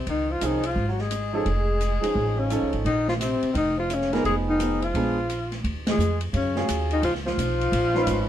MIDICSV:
0, 0, Header, 1, 7, 480
1, 0, Start_track
1, 0, Key_signature, -5, "minor"
1, 0, Tempo, 348028
1, 101, Time_signature, 4, 2, 24, 8
1, 11429, End_track
2, 0, Start_track
2, 0, Title_t, "Alto saxophone"
2, 0, Program_c, 0, 65
2, 137, Note_on_c, 0, 63, 65
2, 448, Note_on_c, 0, 65, 67
2, 468, Note_off_c, 0, 63, 0
2, 641, Note_on_c, 0, 63, 70
2, 662, Note_off_c, 0, 65, 0
2, 919, Note_on_c, 0, 65, 76
2, 940, Note_off_c, 0, 63, 0
2, 1260, Note_off_c, 0, 65, 0
2, 1271, Note_on_c, 0, 66, 52
2, 1401, Note_on_c, 0, 68, 75
2, 1421, Note_off_c, 0, 66, 0
2, 1865, Note_off_c, 0, 68, 0
2, 1890, Note_on_c, 0, 68, 76
2, 3307, Note_on_c, 0, 61, 69
2, 3327, Note_off_c, 0, 68, 0
2, 3779, Note_off_c, 0, 61, 0
2, 3943, Note_on_c, 0, 63, 76
2, 4229, Note_off_c, 0, 63, 0
2, 4267, Note_on_c, 0, 65, 74
2, 4341, Note_off_c, 0, 65, 0
2, 4446, Note_on_c, 0, 60, 76
2, 4882, Note_off_c, 0, 60, 0
2, 4934, Note_on_c, 0, 63, 77
2, 5206, Note_off_c, 0, 63, 0
2, 5237, Note_on_c, 0, 65, 70
2, 5437, Note_on_c, 0, 61, 72
2, 5458, Note_off_c, 0, 65, 0
2, 5711, Note_on_c, 0, 70, 80
2, 5731, Note_off_c, 0, 61, 0
2, 5869, Note_off_c, 0, 70, 0
2, 5877, Note_on_c, 0, 68, 78
2, 6013, Note_off_c, 0, 68, 0
2, 6205, Note_on_c, 0, 63, 77
2, 6685, Note_on_c, 0, 65, 69
2, 6705, Note_off_c, 0, 63, 0
2, 7628, Note_off_c, 0, 65, 0
2, 8157, Note_on_c, 0, 68, 81
2, 8573, Note_off_c, 0, 68, 0
2, 8775, Note_on_c, 0, 61, 71
2, 9206, Note_off_c, 0, 61, 0
2, 9559, Note_on_c, 0, 63, 70
2, 9706, Note_off_c, 0, 63, 0
2, 9714, Note_on_c, 0, 65, 77
2, 9850, Note_off_c, 0, 65, 0
2, 10023, Note_on_c, 0, 65, 93
2, 11429, Note_off_c, 0, 65, 0
2, 11429, End_track
3, 0, Start_track
3, 0, Title_t, "Grand piano"
3, 0, Program_c, 1, 0
3, 562, Note_on_c, 1, 53, 45
3, 575, Note_on_c, 1, 60, 43
3, 578, Note_on_c, 1, 61, 39
3, 588, Note_on_c, 1, 68, 52
3, 849, Note_off_c, 1, 53, 0
3, 855, Note_off_c, 1, 60, 0
3, 857, Note_off_c, 1, 61, 0
3, 862, Note_off_c, 1, 68, 0
3, 1834, Note_on_c, 1, 53, 52
3, 1842, Note_on_c, 1, 61, 47
3, 1846, Note_on_c, 1, 63, 48
3, 1854, Note_on_c, 1, 69, 63
3, 1997, Note_off_c, 1, 53, 0
3, 2001, Note_off_c, 1, 61, 0
3, 2003, Note_off_c, 1, 63, 0
3, 2007, Note_off_c, 1, 69, 0
3, 2776, Note_on_c, 1, 53, 48
3, 2789, Note_on_c, 1, 61, 39
3, 2793, Note_on_c, 1, 63, 45
3, 2799, Note_on_c, 1, 68, 50
3, 3411, Note_off_c, 1, 53, 0
3, 3418, Note_off_c, 1, 61, 0
3, 3420, Note_off_c, 1, 63, 0
3, 3423, Note_off_c, 1, 68, 0
3, 3453, Note_on_c, 1, 61, 53
3, 3454, Note_on_c, 1, 53, 50
3, 3463, Note_on_c, 1, 63, 50
3, 3465, Note_on_c, 1, 69, 60
3, 3938, Note_off_c, 1, 61, 0
3, 3939, Note_off_c, 1, 53, 0
3, 3943, Note_off_c, 1, 63, 0
3, 3944, Note_off_c, 1, 69, 0
3, 5688, Note_on_c, 1, 59, 45
3, 5694, Note_on_c, 1, 53, 52
3, 5696, Note_on_c, 1, 63, 51
3, 5702, Note_on_c, 1, 68, 62
3, 6308, Note_off_c, 1, 59, 0
3, 6311, Note_off_c, 1, 53, 0
3, 6312, Note_off_c, 1, 63, 0
3, 6315, Note_off_c, 1, 68, 0
3, 6339, Note_on_c, 1, 53, 48
3, 6348, Note_on_c, 1, 59, 39
3, 6359, Note_on_c, 1, 63, 42
3, 6364, Note_on_c, 1, 68, 46
3, 6619, Note_off_c, 1, 53, 0
3, 6623, Note_off_c, 1, 59, 0
3, 6628, Note_off_c, 1, 63, 0
3, 6631, Note_off_c, 1, 68, 0
3, 6823, Note_on_c, 1, 56, 49
3, 6835, Note_on_c, 1, 59, 44
3, 6841, Note_on_c, 1, 62, 47
3, 6845, Note_on_c, 1, 68, 52
3, 7101, Note_off_c, 1, 56, 0
3, 7107, Note_off_c, 1, 59, 0
3, 7110, Note_off_c, 1, 62, 0
3, 7112, Note_off_c, 1, 68, 0
3, 9050, Note_on_c, 1, 54, 58
3, 9059, Note_on_c, 1, 61, 55
3, 9059, Note_on_c, 1, 65, 57
3, 9062, Note_on_c, 1, 68, 66
3, 9668, Note_off_c, 1, 54, 0
3, 9672, Note_off_c, 1, 61, 0
3, 9672, Note_off_c, 1, 65, 0
3, 9674, Note_off_c, 1, 68, 0
3, 10970, Note_on_c, 1, 53, 62
3, 10974, Note_on_c, 1, 61, 57
3, 10980, Note_on_c, 1, 63, 55
3, 10987, Note_on_c, 1, 71, 65
3, 11429, Note_off_c, 1, 53, 0
3, 11429, Note_off_c, 1, 61, 0
3, 11429, Note_off_c, 1, 63, 0
3, 11429, Note_off_c, 1, 71, 0
3, 11429, End_track
4, 0, Start_track
4, 0, Title_t, "Tenor saxophone"
4, 0, Program_c, 2, 66
4, 113, Note_on_c, 2, 51, 57
4, 417, Note_on_c, 2, 53, 58
4, 438, Note_off_c, 2, 51, 0
4, 585, Note_on_c, 2, 51, 59
4, 605, Note_off_c, 2, 53, 0
4, 885, Note_on_c, 2, 53, 68
4, 906, Note_off_c, 2, 51, 0
4, 1212, Note_off_c, 2, 53, 0
4, 1220, Note_on_c, 2, 54, 54
4, 1378, Note_on_c, 2, 56, 69
4, 1399, Note_off_c, 2, 54, 0
4, 1840, Note_off_c, 2, 56, 0
4, 1849, Note_on_c, 2, 56, 69
4, 3282, Note_on_c, 2, 49, 60
4, 3303, Note_off_c, 2, 56, 0
4, 3767, Note_off_c, 2, 49, 0
4, 3933, Note_on_c, 2, 51, 66
4, 4224, Note_off_c, 2, 51, 0
4, 4248, Note_on_c, 2, 53, 62
4, 4326, Note_off_c, 2, 53, 0
4, 4397, Note_on_c, 2, 48, 62
4, 4856, Note_off_c, 2, 48, 0
4, 4866, Note_on_c, 2, 51, 59
4, 5170, Note_off_c, 2, 51, 0
4, 5195, Note_on_c, 2, 53, 68
4, 5390, Note_on_c, 2, 49, 62
4, 5410, Note_off_c, 2, 53, 0
4, 5696, Note_on_c, 2, 58, 62
4, 5717, Note_off_c, 2, 49, 0
4, 5859, Note_off_c, 2, 58, 0
4, 5867, Note_on_c, 2, 56, 70
4, 6005, Note_off_c, 2, 56, 0
4, 6180, Note_on_c, 2, 51, 73
4, 6642, Note_on_c, 2, 53, 63
4, 6663, Note_off_c, 2, 51, 0
4, 7607, Note_off_c, 2, 53, 0
4, 8099, Note_on_c, 2, 56, 70
4, 8542, Note_off_c, 2, 56, 0
4, 8734, Note_on_c, 2, 49, 57
4, 9185, Note_off_c, 2, 49, 0
4, 9553, Note_on_c, 2, 51, 61
4, 9696, Note_off_c, 2, 51, 0
4, 9704, Note_on_c, 2, 53, 71
4, 9843, Note_off_c, 2, 53, 0
4, 10011, Note_on_c, 2, 53, 79
4, 11429, Note_off_c, 2, 53, 0
4, 11429, End_track
5, 0, Start_track
5, 0, Title_t, "Upright bass"
5, 0, Program_c, 3, 32
5, 86, Note_on_c, 3, 37, 62
5, 540, Note_off_c, 3, 37, 0
5, 573, Note_on_c, 3, 36, 62
5, 1024, Note_off_c, 3, 36, 0
5, 1042, Note_on_c, 3, 32, 79
5, 1964, Note_off_c, 3, 32, 0
5, 2006, Note_on_c, 3, 29, 62
5, 2747, Note_off_c, 3, 29, 0
5, 2965, Note_on_c, 3, 33, 77
5, 3569, Note_off_c, 3, 33, 0
5, 3613, Note_on_c, 3, 37, 51
5, 3756, Note_off_c, 3, 37, 0
5, 3764, Note_on_c, 3, 32, 54
5, 3916, Note_off_c, 3, 32, 0
5, 3925, Note_on_c, 3, 34, 74
5, 4667, Note_off_c, 3, 34, 0
5, 4889, Note_on_c, 3, 29, 76
5, 5808, Note_off_c, 3, 29, 0
5, 5855, Note_on_c, 3, 29, 66
5, 6771, Note_off_c, 3, 29, 0
5, 6821, Note_on_c, 3, 34, 76
5, 7735, Note_off_c, 3, 34, 0
5, 7779, Note_on_c, 3, 39, 75
5, 8237, Note_off_c, 3, 39, 0
5, 8245, Note_on_c, 3, 41, 83
5, 8720, Note_off_c, 3, 41, 0
5, 8732, Note_on_c, 3, 42, 85
5, 9203, Note_off_c, 3, 42, 0
5, 9212, Note_on_c, 3, 39, 78
5, 9683, Note_off_c, 3, 39, 0
5, 9689, Note_on_c, 3, 37, 69
5, 10161, Note_off_c, 3, 37, 0
5, 10175, Note_on_c, 3, 35, 76
5, 10639, Note_off_c, 3, 35, 0
5, 10647, Note_on_c, 3, 34, 84
5, 11116, Note_off_c, 3, 34, 0
5, 11124, Note_on_c, 3, 32, 80
5, 11429, Note_off_c, 3, 32, 0
5, 11429, End_track
6, 0, Start_track
6, 0, Title_t, "Muted upright bass strokes"
6, 2808, Note_on_c, 9, 29, 34
6, 2946, Note_off_c, 9, 29, 0
6, 4721, Note_on_c, 9, 29, 32
6, 4859, Note_off_c, 9, 29, 0
6, 11429, End_track
7, 0, Start_track
7, 0, Title_t, "Drums"
7, 91, Note_on_c, 9, 36, 25
7, 92, Note_on_c, 9, 51, 44
7, 229, Note_off_c, 9, 36, 0
7, 230, Note_off_c, 9, 51, 0
7, 568, Note_on_c, 9, 44, 49
7, 568, Note_on_c, 9, 51, 52
7, 706, Note_off_c, 9, 44, 0
7, 706, Note_off_c, 9, 51, 0
7, 874, Note_on_c, 9, 51, 52
7, 1012, Note_off_c, 9, 51, 0
7, 1048, Note_on_c, 9, 36, 28
7, 1186, Note_off_c, 9, 36, 0
7, 1357, Note_on_c, 9, 38, 23
7, 1495, Note_off_c, 9, 38, 0
7, 1526, Note_on_c, 9, 44, 46
7, 1526, Note_on_c, 9, 51, 50
7, 1664, Note_off_c, 9, 44, 0
7, 1664, Note_off_c, 9, 51, 0
7, 2008, Note_on_c, 9, 36, 27
7, 2010, Note_on_c, 9, 51, 40
7, 2146, Note_off_c, 9, 36, 0
7, 2148, Note_off_c, 9, 51, 0
7, 2490, Note_on_c, 9, 44, 44
7, 2490, Note_on_c, 9, 51, 44
7, 2628, Note_off_c, 9, 44, 0
7, 2628, Note_off_c, 9, 51, 0
7, 2807, Note_on_c, 9, 51, 51
7, 2944, Note_off_c, 9, 51, 0
7, 2970, Note_on_c, 9, 36, 29
7, 3108, Note_off_c, 9, 36, 0
7, 3451, Note_on_c, 9, 44, 46
7, 3451, Note_on_c, 9, 51, 46
7, 3589, Note_off_c, 9, 44, 0
7, 3589, Note_off_c, 9, 51, 0
7, 3760, Note_on_c, 9, 51, 30
7, 3898, Note_off_c, 9, 51, 0
7, 3933, Note_on_c, 9, 36, 27
7, 3939, Note_on_c, 9, 51, 45
7, 4071, Note_off_c, 9, 36, 0
7, 4077, Note_off_c, 9, 51, 0
7, 4250, Note_on_c, 9, 38, 42
7, 4388, Note_off_c, 9, 38, 0
7, 4422, Note_on_c, 9, 44, 53
7, 4422, Note_on_c, 9, 51, 54
7, 4560, Note_off_c, 9, 44, 0
7, 4560, Note_off_c, 9, 51, 0
7, 4724, Note_on_c, 9, 51, 35
7, 4862, Note_off_c, 9, 51, 0
7, 4893, Note_on_c, 9, 36, 28
7, 4897, Note_on_c, 9, 51, 47
7, 5031, Note_off_c, 9, 36, 0
7, 5034, Note_off_c, 9, 51, 0
7, 5377, Note_on_c, 9, 44, 42
7, 5377, Note_on_c, 9, 51, 44
7, 5515, Note_off_c, 9, 44, 0
7, 5515, Note_off_c, 9, 51, 0
7, 5535, Note_on_c, 9, 38, 26
7, 5673, Note_off_c, 9, 38, 0
7, 5694, Note_on_c, 9, 51, 33
7, 5708, Note_on_c, 9, 38, 33
7, 5832, Note_off_c, 9, 51, 0
7, 5846, Note_off_c, 9, 38, 0
7, 5856, Note_on_c, 9, 36, 25
7, 5863, Note_on_c, 9, 51, 43
7, 5994, Note_off_c, 9, 36, 0
7, 6001, Note_off_c, 9, 51, 0
7, 6341, Note_on_c, 9, 44, 48
7, 6341, Note_on_c, 9, 51, 54
7, 6479, Note_off_c, 9, 44, 0
7, 6479, Note_off_c, 9, 51, 0
7, 6652, Note_on_c, 9, 51, 33
7, 6790, Note_off_c, 9, 51, 0
7, 6820, Note_on_c, 9, 36, 28
7, 6824, Note_on_c, 9, 51, 49
7, 6958, Note_off_c, 9, 36, 0
7, 6962, Note_off_c, 9, 51, 0
7, 7303, Note_on_c, 9, 44, 37
7, 7303, Note_on_c, 9, 51, 44
7, 7441, Note_off_c, 9, 44, 0
7, 7441, Note_off_c, 9, 51, 0
7, 7610, Note_on_c, 9, 38, 26
7, 7612, Note_on_c, 9, 51, 34
7, 7748, Note_off_c, 9, 38, 0
7, 7750, Note_off_c, 9, 51, 0
7, 7779, Note_on_c, 9, 36, 24
7, 7784, Note_on_c, 9, 51, 43
7, 7917, Note_off_c, 9, 36, 0
7, 7922, Note_off_c, 9, 51, 0
7, 8092, Note_on_c, 9, 38, 69
7, 8094, Note_on_c, 9, 51, 55
7, 8230, Note_off_c, 9, 38, 0
7, 8232, Note_off_c, 9, 51, 0
7, 8270, Note_on_c, 9, 44, 51
7, 8408, Note_off_c, 9, 44, 0
7, 8560, Note_on_c, 9, 51, 42
7, 8698, Note_off_c, 9, 51, 0
7, 8736, Note_on_c, 9, 36, 23
7, 8739, Note_on_c, 9, 51, 51
7, 8874, Note_off_c, 9, 36, 0
7, 8877, Note_off_c, 9, 51, 0
7, 9044, Note_on_c, 9, 38, 39
7, 9182, Note_off_c, 9, 38, 0
7, 9216, Note_on_c, 9, 36, 17
7, 9221, Note_on_c, 9, 44, 51
7, 9221, Note_on_c, 9, 51, 61
7, 9354, Note_off_c, 9, 36, 0
7, 9359, Note_off_c, 9, 44, 0
7, 9359, Note_off_c, 9, 51, 0
7, 9525, Note_on_c, 9, 51, 36
7, 9663, Note_off_c, 9, 51, 0
7, 9694, Note_on_c, 9, 36, 15
7, 9697, Note_on_c, 9, 51, 54
7, 9832, Note_off_c, 9, 36, 0
7, 9835, Note_off_c, 9, 51, 0
7, 9862, Note_on_c, 9, 38, 25
7, 10000, Note_off_c, 9, 38, 0
7, 10021, Note_on_c, 9, 38, 38
7, 10159, Note_off_c, 9, 38, 0
7, 10175, Note_on_c, 9, 36, 20
7, 10188, Note_on_c, 9, 44, 50
7, 10188, Note_on_c, 9, 51, 56
7, 10313, Note_off_c, 9, 36, 0
7, 10326, Note_off_c, 9, 44, 0
7, 10326, Note_off_c, 9, 51, 0
7, 10499, Note_on_c, 9, 51, 37
7, 10637, Note_off_c, 9, 51, 0
7, 10653, Note_on_c, 9, 36, 24
7, 10661, Note_on_c, 9, 51, 57
7, 10791, Note_off_c, 9, 36, 0
7, 10799, Note_off_c, 9, 51, 0
7, 10959, Note_on_c, 9, 38, 29
7, 11097, Note_off_c, 9, 38, 0
7, 11127, Note_on_c, 9, 44, 50
7, 11127, Note_on_c, 9, 51, 61
7, 11128, Note_on_c, 9, 36, 20
7, 11265, Note_off_c, 9, 44, 0
7, 11265, Note_off_c, 9, 51, 0
7, 11266, Note_off_c, 9, 36, 0
7, 11429, End_track
0, 0, End_of_file